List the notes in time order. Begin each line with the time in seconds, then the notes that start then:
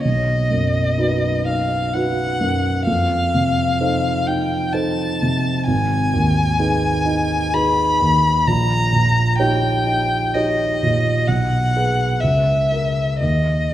0.05 B1 D#5
0.50 F#2
0.98 D#4 F#4 B4
1.45 D#4 F5
1.93 D#4 F#4 B4 F#5
2.41 F#2
2.87 F2 F5
3.34 C3
3.80 D#4 A4 C5
4.27 D#4 G5
4.73 D#4 A4 C5 A5
5.22 C3
5.68 G#1 G#5
6.14 D#2
6.59 D#4 G#4 B4
7.05 D#4
7.54 D#4 G#4 B4 B5
8.00 D#2
8.47 A#1 A#5
8.93 A#2
9.39 D#4 G4 C#5 G5
9.86 D#4
10.34 D#4 G4 C#5 D#5
10.83 A#2
11.27 B1 F#5
11.77 G#4 B4
12.21 C#2 E5
12.72 A#4
13.21 D#2 D#5